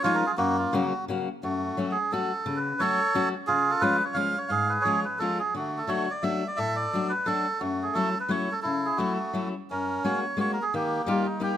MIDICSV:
0, 0, Header, 1, 3, 480
1, 0, Start_track
1, 0, Key_signature, 3, "minor"
1, 0, Tempo, 344432
1, 537, Time_signature, 3, 2, 24, 8
1, 16127, End_track
2, 0, Start_track
2, 0, Title_t, "Melodica"
2, 0, Program_c, 0, 22
2, 46, Note_on_c, 0, 65, 85
2, 56, Note_on_c, 0, 73, 114
2, 203, Note_on_c, 0, 70, 100
2, 222, Note_off_c, 0, 73, 0
2, 358, Note_off_c, 0, 70, 0
2, 369, Note_on_c, 0, 68, 96
2, 442, Note_off_c, 0, 68, 0
2, 493, Note_off_c, 0, 65, 0
2, 522, Note_on_c, 0, 58, 70
2, 523, Note_on_c, 0, 66, 106
2, 793, Note_off_c, 0, 66, 0
2, 808, Note_on_c, 0, 65, 82
2, 1008, Note_on_c, 0, 66, 83
2, 1029, Note_off_c, 0, 65, 0
2, 1215, Note_off_c, 0, 58, 0
2, 1465, Note_off_c, 0, 66, 0
2, 1995, Note_on_c, 0, 57, 58
2, 2001, Note_on_c, 0, 66, 82
2, 2659, Note_off_c, 0, 66, 0
2, 2667, Note_on_c, 0, 68, 90
2, 2682, Note_off_c, 0, 57, 0
2, 2949, Note_on_c, 0, 69, 93
2, 2950, Note_off_c, 0, 68, 0
2, 3571, Note_on_c, 0, 71, 77
2, 3609, Note_off_c, 0, 69, 0
2, 3888, Note_on_c, 0, 73, 113
2, 3906, Note_on_c, 0, 69, 64
2, 3910, Note_off_c, 0, 71, 0
2, 4578, Note_off_c, 0, 73, 0
2, 4587, Note_off_c, 0, 69, 0
2, 4835, Note_on_c, 0, 68, 102
2, 4850, Note_on_c, 0, 65, 70
2, 5161, Note_on_c, 0, 69, 100
2, 5170, Note_off_c, 0, 68, 0
2, 5308, Note_on_c, 0, 71, 115
2, 5329, Note_off_c, 0, 69, 0
2, 5527, Note_off_c, 0, 65, 0
2, 5640, Note_on_c, 0, 73, 81
2, 5645, Note_off_c, 0, 71, 0
2, 5768, Note_on_c, 0, 77, 111
2, 5807, Note_off_c, 0, 73, 0
2, 6104, Note_on_c, 0, 73, 85
2, 6114, Note_off_c, 0, 77, 0
2, 6248, Note_on_c, 0, 77, 96
2, 6276, Note_off_c, 0, 73, 0
2, 6287, Note_on_c, 0, 68, 73
2, 6540, Note_on_c, 0, 71, 78
2, 6592, Note_off_c, 0, 77, 0
2, 6709, Note_on_c, 0, 73, 103
2, 6736, Note_off_c, 0, 71, 0
2, 6972, Note_off_c, 0, 68, 0
2, 7035, Note_off_c, 0, 73, 0
2, 7035, Note_on_c, 0, 71, 73
2, 7226, Note_on_c, 0, 69, 100
2, 7229, Note_off_c, 0, 71, 0
2, 7506, Note_off_c, 0, 69, 0
2, 7519, Note_on_c, 0, 68, 83
2, 7723, Note_off_c, 0, 68, 0
2, 7746, Note_on_c, 0, 66, 75
2, 7775, Note_on_c, 0, 57, 62
2, 8049, Note_on_c, 0, 69, 80
2, 8070, Note_off_c, 0, 66, 0
2, 8199, Note_on_c, 0, 73, 100
2, 8218, Note_off_c, 0, 69, 0
2, 8446, Note_off_c, 0, 57, 0
2, 8505, Note_on_c, 0, 74, 78
2, 8541, Note_off_c, 0, 73, 0
2, 8674, Note_on_c, 0, 76, 95
2, 8689, Note_off_c, 0, 74, 0
2, 9020, Note_off_c, 0, 76, 0
2, 9022, Note_on_c, 0, 74, 82
2, 9149, Note_on_c, 0, 76, 108
2, 9179, Note_on_c, 0, 69, 63
2, 9188, Note_off_c, 0, 74, 0
2, 9419, Note_on_c, 0, 74, 87
2, 9431, Note_off_c, 0, 76, 0
2, 9862, Note_off_c, 0, 69, 0
2, 9881, Note_on_c, 0, 71, 85
2, 9920, Note_off_c, 0, 74, 0
2, 10117, Note_on_c, 0, 69, 104
2, 10125, Note_off_c, 0, 71, 0
2, 10593, Note_on_c, 0, 66, 77
2, 10600, Note_on_c, 0, 57, 72
2, 10618, Note_off_c, 0, 69, 0
2, 10906, Note_on_c, 0, 68, 72
2, 10932, Note_off_c, 0, 66, 0
2, 11066, Note_off_c, 0, 68, 0
2, 11070, Note_on_c, 0, 69, 99
2, 11287, Note_off_c, 0, 57, 0
2, 11407, Note_off_c, 0, 69, 0
2, 11428, Note_on_c, 0, 71, 72
2, 11568, Note_on_c, 0, 73, 98
2, 11580, Note_off_c, 0, 71, 0
2, 11870, Note_on_c, 0, 69, 89
2, 11894, Note_off_c, 0, 73, 0
2, 11990, Note_off_c, 0, 69, 0
2, 12011, Note_on_c, 0, 69, 83
2, 12024, Note_on_c, 0, 64, 65
2, 12337, Note_on_c, 0, 68, 78
2, 12359, Note_off_c, 0, 69, 0
2, 12497, Note_on_c, 0, 66, 73
2, 12517, Note_off_c, 0, 68, 0
2, 12523, Note_on_c, 0, 57, 57
2, 12725, Note_off_c, 0, 64, 0
2, 13216, Note_off_c, 0, 66, 0
2, 13230, Note_off_c, 0, 57, 0
2, 13523, Note_on_c, 0, 61, 64
2, 13539, Note_on_c, 0, 70, 75
2, 13981, Note_off_c, 0, 70, 0
2, 13993, Note_on_c, 0, 73, 84
2, 14213, Note_off_c, 0, 61, 0
2, 14475, Note_off_c, 0, 73, 0
2, 14496, Note_on_c, 0, 73, 99
2, 14654, Note_off_c, 0, 73, 0
2, 14679, Note_on_c, 0, 70, 78
2, 14799, Note_on_c, 0, 68, 84
2, 14825, Note_off_c, 0, 70, 0
2, 14964, Note_off_c, 0, 68, 0
2, 14969, Note_on_c, 0, 58, 68
2, 14983, Note_on_c, 0, 67, 84
2, 15359, Note_off_c, 0, 67, 0
2, 15380, Note_on_c, 0, 67, 55
2, 15437, Note_off_c, 0, 67, 0
2, 15446, Note_on_c, 0, 65, 85
2, 15646, Note_off_c, 0, 58, 0
2, 15685, Note_on_c, 0, 63, 67
2, 15705, Note_off_c, 0, 65, 0
2, 15916, Note_off_c, 0, 63, 0
2, 15925, Note_on_c, 0, 67, 96
2, 16127, Note_off_c, 0, 67, 0
2, 16127, End_track
3, 0, Start_track
3, 0, Title_t, "Steel-string acoustic guitar"
3, 0, Program_c, 1, 25
3, 58, Note_on_c, 1, 56, 68
3, 59, Note_on_c, 1, 53, 84
3, 68, Note_on_c, 1, 61, 62
3, 77, Note_on_c, 1, 63, 72
3, 84, Note_on_c, 1, 65, 85
3, 312, Note_off_c, 1, 56, 0
3, 314, Note_off_c, 1, 61, 0
3, 315, Note_off_c, 1, 53, 0
3, 323, Note_off_c, 1, 63, 0
3, 326, Note_off_c, 1, 65, 0
3, 530, Note_on_c, 1, 42, 78
3, 894, Note_off_c, 1, 42, 0
3, 1015, Note_on_c, 1, 49, 69
3, 1022, Note_on_c, 1, 58, 65
3, 1024, Note_on_c, 1, 54, 62
3, 1036, Note_on_c, 1, 66, 83
3, 1038, Note_on_c, 1, 61, 67
3, 1275, Note_off_c, 1, 49, 0
3, 1277, Note_off_c, 1, 54, 0
3, 1278, Note_off_c, 1, 58, 0
3, 1284, Note_off_c, 1, 66, 0
3, 1286, Note_off_c, 1, 61, 0
3, 1510, Note_on_c, 1, 49, 55
3, 1514, Note_on_c, 1, 54, 57
3, 1526, Note_on_c, 1, 61, 60
3, 1527, Note_on_c, 1, 58, 48
3, 1536, Note_on_c, 1, 66, 66
3, 1770, Note_off_c, 1, 49, 0
3, 1771, Note_off_c, 1, 54, 0
3, 1773, Note_off_c, 1, 58, 0
3, 1778, Note_off_c, 1, 61, 0
3, 1783, Note_off_c, 1, 66, 0
3, 1996, Note_on_c, 1, 42, 68
3, 2359, Note_off_c, 1, 42, 0
3, 2470, Note_on_c, 1, 54, 61
3, 2477, Note_on_c, 1, 61, 52
3, 2480, Note_on_c, 1, 57, 58
3, 2494, Note_on_c, 1, 66, 63
3, 2731, Note_off_c, 1, 54, 0
3, 2733, Note_off_c, 1, 57, 0
3, 2734, Note_off_c, 1, 61, 0
3, 2742, Note_off_c, 1, 66, 0
3, 2953, Note_on_c, 1, 54, 55
3, 2959, Note_on_c, 1, 57, 57
3, 2966, Note_on_c, 1, 61, 50
3, 2975, Note_on_c, 1, 66, 69
3, 3211, Note_off_c, 1, 54, 0
3, 3212, Note_off_c, 1, 57, 0
3, 3217, Note_off_c, 1, 61, 0
3, 3219, Note_off_c, 1, 66, 0
3, 3425, Note_on_c, 1, 49, 78
3, 3790, Note_off_c, 1, 49, 0
3, 3900, Note_on_c, 1, 54, 62
3, 3907, Note_on_c, 1, 57, 62
3, 3920, Note_on_c, 1, 61, 58
3, 3925, Note_on_c, 1, 66, 77
3, 4161, Note_off_c, 1, 54, 0
3, 4164, Note_off_c, 1, 57, 0
3, 4172, Note_off_c, 1, 61, 0
3, 4172, Note_off_c, 1, 66, 0
3, 4383, Note_on_c, 1, 54, 66
3, 4390, Note_on_c, 1, 57, 58
3, 4391, Note_on_c, 1, 61, 66
3, 4402, Note_on_c, 1, 66, 82
3, 4639, Note_off_c, 1, 54, 0
3, 4640, Note_off_c, 1, 57, 0
3, 4644, Note_off_c, 1, 61, 0
3, 4646, Note_off_c, 1, 66, 0
3, 4858, Note_on_c, 1, 49, 67
3, 5214, Note_off_c, 1, 49, 0
3, 5322, Note_on_c, 1, 56, 61
3, 5323, Note_on_c, 1, 53, 66
3, 5335, Note_on_c, 1, 65, 68
3, 5338, Note_on_c, 1, 61, 65
3, 5578, Note_off_c, 1, 56, 0
3, 5581, Note_off_c, 1, 53, 0
3, 5585, Note_off_c, 1, 65, 0
3, 5587, Note_off_c, 1, 61, 0
3, 5778, Note_on_c, 1, 53, 59
3, 5797, Note_on_c, 1, 61, 52
3, 5798, Note_on_c, 1, 56, 54
3, 5807, Note_on_c, 1, 65, 68
3, 6047, Note_off_c, 1, 53, 0
3, 6055, Note_off_c, 1, 61, 0
3, 6058, Note_off_c, 1, 56, 0
3, 6061, Note_off_c, 1, 65, 0
3, 6272, Note_on_c, 1, 44, 72
3, 6637, Note_off_c, 1, 44, 0
3, 6757, Note_on_c, 1, 53, 57
3, 6766, Note_on_c, 1, 56, 63
3, 6770, Note_on_c, 1, 61, 58
3, 6783, Note_on_c, 1, 65, 70
3, 7019, Note_off_c, 1, 53, 0
3, 7023, Note_off_c, 1, 56, 0
3, 7027, Note_off_c, 1, 61, 0
3, 7029, Note_off_c, 1, 65, 0
3, 7250, Note_on_c, 1, 53, 54
3, 7256, Note_on_c, 1, 56, 49
3, 7267, Note_on_c, 1, 61, 50
3, 7274, Note_on_c, 1, 65, 64
3, 7511, Note_off_c, 1, 53, 0
3, 7512, Note_off_c, 1, 56, 0
3, 7519, Note_off_c, 1, 61, 0
3, 7522, Note_off_c, 1, 65, 0
3, 7728, Note_on_c, 1, 50, 66
3, 8095, Note_off_c, 1, 50, 0
3, 8185, Note_on_c, 1, 54, 59
3, 8198, Note_on_c, 1, 57, 56
3, 8207, Note_on_c, 1, 62, 55
3, 8215, Note_on_c, 1, 66, 73
3, 8460, Note_off_c, 1, 54, 0
3, 8467, Note_off_c, 1, 57, 0
3, 8469, Note_off_c, 1, 62, 0
3, 8475, Note_off_c, 1, 66, 0
3, 8678, Note_on_c, 1, 54, 55
3, 8686, Note_on_c, 1, 57, 58
3, 8695, Note_on_c, 1, 66, 69
3, 8696, Note_on_c, 1, 62, 58
3, 8949, Note_off_c, 1, 54, 0
3, 8953, Note_off_c, 1, 57, 0
3, 8956, Note_off_c, 1, 62, 0
3, 8957, Note_off_c, 1, 66, 0
3, 9173, Note_on_c, 1, 45, 65
3, 9540, Note_off_c, 1, 45, 0
3, 9663, Note_on_c, 1, 54, 58
3, 9670, Note_on_c, 1, 57, 56
3, 9681, Note_on_c, 1, 62, 50
3, 9690, Note_on_c, 1, 66, 72
3, 9919, Note_off_c, 1, 54, 0
3, 9919, Note_off_c, 1, 57, 0
3, 9921, Note_off_c, 1, 62, 0
3, 9930, Note_off_c, 1, 66, 0
3, 10117, Note_on_c, 1, 54, 73
3, 10124, Note_on_c, 1, 57, 53
3, 10141, Note_on_c, 1, 62, 55
3, 10142, Note_on_c, 1, 66, 68
3, 10381, Note_off_c, 1, 54, 0
3, 10383, Note_off_c, 1, 57, 0
3, 10392, Note_off_c, 1, 66, 0
3, 10393, Note_off_c, 1, 62, 0
3, 10604, Note_on_c, 1, 42, 63
3, 10971, Note_off_c, 1, 42, 0
3, 11085, Note_on_c, 1, 54, 67
3, 11092, Note_on_c, 1, 57, 65
3, 11097, Note_on_c, 1, 61, 53
3, 11103, Note_on_c, 1, 64, 67
3, 11343, Note_off_c, 1, 54, 0
3, 11345, Note_off_c, 1, 57, 0
3, 11349, Note_off_c, 1, 61, 0
3, 11349, Note_off_c, 1, 64, 0
3, 11548, Note_on_c, 1, 54, 68
3, 11557, Note_on_c, 1, 57, 58
3, 11565, Note_on_c, 1, 61, 52
3, 11578, Note_on_c, 1, 64, 72
3, 11812, Note_off_c, 1, 54, 0
3, 11815, Note_off_c, 1, 57, 0
3, 11820, Note_off_c, 1, 61, 0
3, 11827, Note_off_c, 1, 64, 0
3, 12056, Note_on_c, 1, 49, 61
3, 12415, Note_off_c, 1, 49, 0
3, 12517, Note_on_c, 1, 54, 63
3, 12524, Note_on_c, 1, 57, 65
3, 12535, Note_on_c, 1, 61, 54
3, 12538, Note_on_c, 1, 64, 64
3, 12783, Note_off_c, 1, 54, 0
3, 12788, Note_off_c, 1, 57, 0
3, 12790, Note_off_c, 1, 61, 0
3, 12793, Note_off_c, 1, 64, 0
3, 13009, Note_on_c, 1, 54, 51
3, 13019, Note_on_c, 1, 57, 48
3, 13023, Note_on_c, 1, 61, 55
3, 13026, Note_on_c, 1, 64, 62
3, 13282, Note_off_c, 1, 54, 0
3, 13283, Note_off_c, 1, 61, 0
3, 13284, Note_off_c, 1, 57, 0
3, 13289, Note_off_c, 1, 64, 0
3, 13532, Note_on_c, 1, 42, 55
3, 13893, Note_off_c, 1, 42, 0
3, 13996, Note_on_c, 1, 56, 56
3, 13998, Note_on_c, 1, 58, 57
3, 14006, Note_on_c, 1, 61, 51
3, 14012, Note_on_c, 1, 66, 65
3, 14258, Note_off_c, 1, 58, 0
3, 14259, Note_off_c, 1, 56, 0
3, 14263, Note_off_c, 1, 61, 0
3, 14266, Note_off_c, 1, 66, 0
3, 14447, Note_on_c, 1, 56, 61
3, 14462, Note_on_c, 1, 58, 53
3, 14468, Note_on_c, 1, 61, 47
3, 14478, Note_on_c, 1, 66, 60
3, 14722, Note_off_c, 1, 56, 0
3, 14729, Note_off_c, 1, 58, 0
3, 14733, Note_off_c, 1, 61, 0
3, 14735, Note_off_c, 1, 66, 0
3, 14966, Note_on_c, 1, 51, 72
3, 15325, Note_off_c, 1, 51, 0
3, 15419, Note_on_c, 1, 55, 63
3, 15425, Note_on_c, 1, 58, 58
3, 15437, Note_on_c, 1, 63, 60
3, 15440, Note_on_c, 1, 67, 80
3, 15684, Note_off_c, 1, 55, 0
3, 15687, Note_off_c, 1, 58, 0
3, 15692, Note_off_c, 1, 67, 0
3, 15694, Note_off_c, 1, 63, 0
3, 15885, Note_on_c, 1, 55, 54
3, 15891, Note_on_c, 1, 58, 53
3, 15900, Note_on_c, 1, 63, 60
3, 15906, Note_on_c, 1, 67, 67
3, 16127, Note_off_c, 1, 55, 0
3, 16127, Note_off_c, 1, 58, 0
3, 16127, Note_off_c, 1, 63, 0
3, 16127, Note_off_c, 1, 67, 0
3, 16127, End_track
0, 0, End_of_file